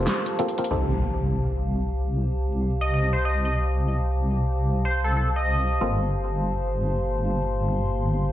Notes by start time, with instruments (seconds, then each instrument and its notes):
Already playing: analog synth pad G3 A#3 F4 A4 C5, clav A#3 C4 F4 A4, ambient pad G4 C5 F5 A5
0.07 snare, closed hi-hat, shaker
0.26 closed hi-hat, shaker
0.39 clav A#3 C4 F4 A4, closed hi-hat
0.48 closed hi-hat
0.58 clav A#3 C4 F4 A#4, closed hi-hat
0.64 closed hi-hat
0.70 wobble bass C2, clav C4 D#4 G4 A4, analog synth pad C5 A5 D6, impact
2.81 analog synth lead D#5
2.94 analog synth lead D#5
3.13 analog synth lead C5
3.25 analog synth lead D#5, analog synth pad G5
3.45 analog synth lead D#5
4.85 analog synth lead C5
5.04 analog synth lead A4
5.17 analog synth lead A4
5.36 analog synth lead D#5
5.81 wobble bass G1, clav A#3 C4 F4 A4, analog synth pad A#3 F5 A5 C6